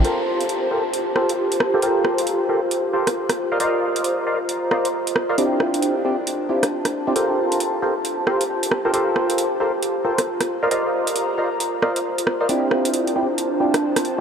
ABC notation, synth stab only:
X:1
M:4/4
L:1/16
Q:"Swing 16ths" 1/4=135
K:Gm
V:1 name="Synth stab"
[FGABc]6 [FGABc] z3 [FGABc] z4 [FGABc] | [FGABc]6 [FGABc] z3 [FGABc] z4 [Bcdef] | [Bcdef]6 [Bcdef] z3 [Bcdef] z4 [Bcdef] | [CD=EFG]6 [CDEFG] z3 [CDEFG] z4 [CDEFG] |
[FGABc]6 [FGABc] z3 [FGABc] z4 [FGABc] | [FGABc]6 [FGABc] z3 [FGABc] z4 [Bcdef] | [Bcdef]6 [Bcdef] z3 [Bcdef] z4 [Bcdef] | [CD=EFG]6 [CDEFG] z3 [CDEFG] z4 z |]